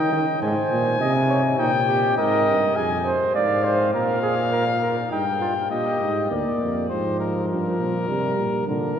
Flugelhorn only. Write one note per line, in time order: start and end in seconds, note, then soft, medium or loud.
0.00 0.40 D#5 medium
0.41 0.99 C5 medium
1.00 1.13 D#5 medium
1.28 1.42 C#5 medium
1.58 1.71 D#4 medium
1.87 2.16 G4 medium
2.18 2.75 A#4 loud
2.76 2.89 G#4 medium
3.06 3.34 C5 loud
3.35 3.65 D5 loud
3.64 3.93 C5 loud
3.94 4.21 A#4 medium
4.22 4.35 G#4 medium
4.52 4.65 A#4 medium
4.82 4.96 A#4 medium
5.11 5.24 D#4 medium
5.41 5.54 F4 medium
5.70 6.29 G4 medium